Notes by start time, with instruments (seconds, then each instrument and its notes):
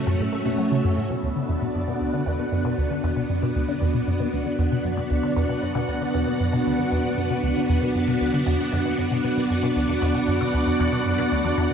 Already playing: string machine A3 C#4 F#4 C#5 E5
0.07 synth arpeggio sound F#2
0.20 synth arpeggio sound A2
0.33 synth arpeggio sound A3
0.46 synth arpeggio sound B2
0.58 synth arpeggio sound F#3
0.71 synth arpeggio sound C#3
0.84 synth arpeggio sound F#2
0.97 synth arpeggio sound A2
1.10 synth arpeggio sound B2, string machine B3, synth texture F#5
1.23 synth arpeggio sound D2, string machine D4
1.36 synth arpeggio sound D3, string machine F#4
1.43 string machine D5
1.49 synth arpeggio sound E2
1.62 synth arpeggio sound B2
1.75 synth arpeggio sound F#2
1.88 synth arpeggio sound B2
2.01 synth arpeggio sound D2, string machine F#5
2.13 synth arpeggio sound D3
2.26 synth arpeggio sound E2
2.39 synth arpeggio sound B2
2.52 synth arpeggio sound F#2
2.65 synth arpeggio sound B2
2.78 synth arpeggio sound D2
2.90 synth arpeggio sound D3
3.04 synth arpeggio sound E2
3.16 synth arpeggio sound B2
3.29 synth arpeggio sound F#2
3.42 synth arpeggio sound B2
3.55 synth arpeggio sound D2
3.68 synth arpeggio sound D3
3.81 synth arpeggio sound E2
3.94 synth arpeggio sound B2
4.07 synth arpeggio sound F#2
4.20 synth arpeggio sound B2
4.33 synth arpeggio sound D2
4.46 synth arpeggio sound D3
4.59 synth arpeggio sound E2
4.72 synth arpeggio sound B2
4.84 synth arpeggio sound F#2
4.97 synth arpeggio sound B2
5.10 synth arpeggio sound D2
5.23 synth arpeggio sound D3
5.36 synth arpeggio sound E2
5.49 synth arpeggio sound B2
5.62 synth arpeggio sound F#2
5.75 synth arpeggio sound B2
5.88 synth arpeggio sound D2
6.01 synth arpeggio sound D3
6.14 synth arpeggio sound E2
6.27 synth arpeggio sound B2
6.40 synth arpeggio sound F#2
6.53 synth arpeggio sound B2
6.66 synth arpeggio sound D2
6.79 synth arpeggio sound D3
6.91 synth arpeggio sound E2
7.04 synth arpeggio sound B2
7.17 synth arpeggio sound F#2
7.30 synth arpeggio sound B2
7.43 synth arpeggio sound D2
7.56 synth arpeggio sound D3
7.69 synth arpeggio sound E2
7.82 synth arpeggio sound B2
7.95 synth arpeggio sound F#2
8.08 synth arpeggio sound B2
8.21 synth arpeggio sound D2
8.33 synth arpeggio sound D3
8.46 synth arpeggio sound E2
8.59 synth arpeggio sound B2
8.72 synth arpeggio sound F#2
8.85 synth arpeggio sound B2
8.98 synth arpeggio sound F#2
9.11 synth arpeggio sound B2
9.24 synth arpeggio sound B2
9.37 synth arpeggio sound B2
9.50 synth arpeggio sound F#2
9.63 synth arpeggio sound B2
9.76 synth arpeggio sound D2
9.89 synth arpeggio sound E2
10.02 synth arpeggio sound E2
10.15 synth arpeggio sound B2
10.28 synth arpeggio sound F#2
10.41 synth arpeggio sound B2
10.54 synth arpeggio sound D2
10.67 synth arpeggio sound E2
10.80 synth arpeggio sound E2
10.92 synth arpeggio sound B2
11.06 synth arpeggio sound F#2
11.18 synth arpeggio sound B2
11.31 synth arpeggio sound D2
11.44 synth arpeggio sound E2
11.57 synth arpeggio sound E2
11.70 synth arpeggio sound B2